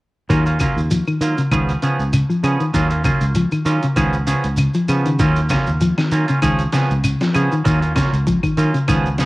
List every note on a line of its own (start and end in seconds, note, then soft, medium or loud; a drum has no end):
0.29 0.65 D#2 medium
0.29 0.56 D#3 medium
0.29 0.46 F#3 medium
0.29 0.46 A#3 medium
0.29 0.45 C#4 medium
0.29 0.45 F4 medium
0.29 kick medium
0.29 closed hi-hat medium
0.29 shekere medium
0.46 0.59 A#3 soft
0.46 0.59 C#4 soft
0.46 0.60 F4 soft
0.46 closed hi-hat soft
0.46 shekere soft
0.59 0.87 C#3 medium
0.59 0.79 F#3 soft
0.59 0.80 A#3 medium
0.59 0.80 C#4 medium
0.59 0.80 F4 medium
0.59 kick medium
0.59 closed hi-hat soft
0.59 claves medium
0.59 shekere medium
0.76 1.00 D#2 medium
0.76 shekere soft
0.91 1.05 F3 medium
0.91 closed hi-hat medium
0.91 shekere medium
1.07 1.34 D#3 medium
1.07 claves medium
1.07 shekere soft
1.21 1.34 D#3 medium
1.21 1.41 F#3 soft
1.21 1.41 A#3 medium
1.21 1.41 F4 medium
1.21 closed hi-hat soft
1.21 shekere medium
1.38 1.50 C#3 medium
1.38 closed hi-hat soft
1.38 shekere soft
1.51 1.75 C#2 medium
1.51 1.79 D#3 medium
1.51 1.71 F3 medium
1.51 1.71 B3 medium
1.51 1.72 C#4 medium
1.51 1.72 G#4 medium
1.51 kick medium
1.51 closed hi-hat medium
1.51 claves medium
1.51 shekere medium
1.69 closed hi-hat soft
1.69 shekere soft
1.82 2.09 C#3 medium
1.82 2.02 F3 medium
1.82 2.02 B3 medium
1.82 2.03 C#4 medium
1.82 2.03 G#4 medium
1.82 closed hi-hat soft
1.82 shekere medium
1.99 2.22 C#2 medium
1.99 shekere soft
2.13 2.28 C#3 medium
2.13 closed hi-hat medium
2.13 claves medium
2.13 shekere medium
2.30 2.56 F3 medium
2.30 shekere soft
2.43 2.56 C#3 medium
2.43 2.63 F3 medium
2.43 2.63 B3 medium
2.43 2.63 C#4 medium
2.43 2.64 G#4 medium
2.43 closed hi-hat soft
2.43 claves medium
2.43 shekere medium
2.60 2.73 D#3 medium
2.60 shekere soft
2.74 3.10 D#2 medium
2.74 3.01 D#3 medium
2.74 2.91 F#3 medium
2.74 2.90 A#3 medium
2.74 2.90 C#4 medium
2.74 2.89 F4 medium
2.74 kick medium
2.74 closed hi-hat medium
2.74 shekere medium
2.90 3.04 A#3 soft
2.90 3.04 C#4 soft
2.90 3.04 F4 soft
2.90 closed hi-hat soft
2.90 shekere soft
3.04 3.32 C#3 medium
3.04 3.24 F#3 medium
3.04 3.25 A#3 medium
3.04 3.25 C#4 medium
3.04 3.25 F4 medium
3.04 kick medium
3.04 closed hi-hat soft
3.04 claves medium
3.04 shekere medium
3.21 3.45 C#2 medium
3.21 closed hi-hat soft
3.21 shekere soft
3.35 3.51 F3 medium
3.35 closed hi-hat medium
3.35 shekere medium
3.52 3.79 D#3 medium
3.52 muted fingered electric bass stroke soft
3.52 closed hi-hat soft
3.52 claves soft
3.52 shekere soft
3.65 3.79 D#3 medium
3.65 3.85 F#3 soft
3.65 3.86 A#3 medium
3.65 3.86 C#4 medium
3.65 3.86 F4 medium
3.65 closed hi-hat soft
3.65 shekere medium
3.83 3.96 C#3 medium
3.83 closed hi-hat soft
3.83 shekere soft
3.96 4.33 C#2 medium
3.96 4.24 D#3 medium
3.96 4.16 F3 medium
3.96 4.16 B3 medium
3.96 4.17 C#4 medium
3.96 4.17 G#4 medium
3.96 kick medium
3.96 closed hi-hat medium
3.96 claves medium
3.96 shekere medium
4.13 shekere soft
4.27 4.54 C#3 medium
4.27 4.47 F3 medium
4.27 4.47 B3 medium
4.27 4.47 C#4 medium
4.27 4.47 G#4 medium
4.27 closed hi-hat soft
4.27 shekere medium
4.44 4.68 C#2 medium
4.44 closed hi-hat soft
4.44 shekere soft
4.57 4.73 C#3 medium
4.57 closed hi-hat medium
4.57 claves medium
4.57 shekere medium
4.74 5.02 F3 medium
4.74 closed hi-hat soft
4.74 shekere soft
4.89 5.21 C#3 medium
4.89 5.09 F3 medium
4.89 5.09 B3 medium
4.89 5.09 C#4 medium
4.89 closed hi-hat medium
4.89 claves medium
4.89 shekere medium
5.06 5.18 D#3 medium
5.06 closed hi-hat soft
5.06 shekere soft
5.19 5.56 D#2 medium
5.19 5.47 D#3 medium
5.19 5.39 F#3 medium
5.19 5.39 A#3 medium
5.19 5.39 C#4 medium
5.19 5.40 F4 medium
5.19 kick medium
5.19 closed hi-hat medium
5.19 shekere medium
5.36 closed hi-hat soft
5.36 shekere soft
5.49 5.77 C#3 medium
5.49 5.70 F#3 medium
5.49 5.70 A#3 medium
5.49 5.70 C#4 medium
5.49 5.70 F4 medium
5.49 kick medium
5.49 snare medium
5.49 closed hi-hat soft
5.49 claves medium
5.49 shekere medium
5.67 5.91 D#2 medium
5.67 shekere soft
5.81 5.96 F3 medium
5.81 closed hi-hat medium
5.81 shekere medium
5.98 6.25 D#3 medium
5.98 snare medium
5.98 claves medium
5.98 shekere soft
6.11 6.25 D#3 medium
6.11 6.29 F#3 medium
6.11 6.28 A#3 medium
6.11 6.27 C#4 medium
6.11 6.27 F4 medium
6.11 closed hi-hat soft
6.11 shekere medium
6.28 6.41 C#3 medium
6.28 6.42 A#3 soft
6.28 6.41 C#4 soft
6.28 6.42 F4 soft
6.28 closed hi-hat soft
6.28 shekere soft
6.42 6.66 C#2 medium
6.42 6.69 D#3 medium
6.42 6.62 F3 medium
6.42 6.62 C#4 medium
6.42 6.62 G#4 medium
6.42 muted clean electric guitar stroke medium
6.42 kick medium
6.42 closed hi-hat medium
6.42 claves medium
6.42 shekere medium
6.59 closed hi-hat soft
6.59 shekere soft
6.72 7.00 C#3 medium
6.72 6.93 F3 medium
6.72 6.93 B3 medium
6.72 6.93 C#4 medium
6.72 6.93 G#4 medium
6.72 snare medium
6.72 closed hi-hat soft
6.72 shekere medium
6.91 7.14 C#2 medium
6.91 shekere soft
7.04 7.19 C#3 medium
7.04 closed hi-hat medium
7.04 claves medium
7.04 shekere medium
7.21 7.48 F3 medium
7.21 snare medium
7.21 shekere soft
7.34 7.48 C#3 medium
7.34 7.54 F3 medium
7.34 7.54 B3 medium
7.34 7.54 C#4 medium
7.34 7.55 G#4 medium
7.34 closed hi-hat medium
7.34 claves medium
7.34 shekere medium
7.52 7.64 D#3 medium
7.52 shekere soft
7.64 8.01 D#2 medium
7.64 7.92 D#3 medium
7.64 7.82 F#3 medium
7.64 7.81 A#3 medium
7.64 7.81 C#4 medium
7.64 7.80 F4 medium
7.64 kick medium
7.64 closed hi-hat medium
7.64 shekere medium
7.81 7.94 A#3 soft
7.81 7.95 C#4 soft
7.81 7.95 F4 soft
7.81 closed hi-hat soft
7.81 shekere soft
7.95 8.23 C#3 medium
7.95 8.15 F#3 medium
7.95 8.15 A#3 medium
7.95 8.16 C#4 medium
7.95 8.16 F4 medium
7.95 kick medium
7.95 snare medium
7.95 closed hi-hat medium
7.95 claves medium
7.95 shekere medium
8.13 8.36 C#2 medium
8.13 closed hi-hat soft
8.13 shekere soft
8.27 8.42 F3 medium
8.27 kick medium
8.27 closed hi-hat medium
8.27 shekere medium
8.43 8.70 D#3 medium
8.43 muted fingered electric bass stroke soft
8.43 kick soft
8.43 closed hi-hat soft
8.43 claves medium
8.43 shekere soft
8.57 8.70 D#3 medium
8.57 8.77 F#3 soft
8.57 8.77 A#3 medium
8.57 8.77 C#4 medium
8.57 8.78 F4 medium
8.57 closed hi-hat soft
8.57 shekere medium
8.74 8.86 C#3 medium
8.74 closed hi-hat soft
8.74 shekere soft
8.88 9.24 C#2 medium
8.88 9.15 D#3 medium
8.88 9.08 F3 medium
8.88 9.08 B3 medium
8.88 9.08 C#4 medium
8.88 9.08 G#4 medium
8.88 kick medium
8.88 closed hi-hat medium
8.88 claves medium
8.88 shekere medium
9.06 shekere soft
9.18 9.25 C#3 medium
9.18 9.25 F3 medium
9.18 9.25 B3 medium
9.18 9.25 C#4 medium
9.18 9.25 G#4 medium
9.18 snare medium
9.18 closed hi-hat soft
9.18 shekere medium